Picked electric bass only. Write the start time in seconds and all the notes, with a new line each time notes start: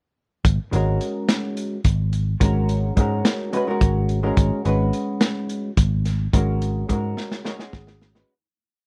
0.45 G#1
0.73 G#1
1.85 G#1
2.41 G#1
2.97 G#2
3.81 G#1
4.37 G#1
4.66 G#1
5.77 G#1
6.34 G#1
6.89 G#2
7.73 G#1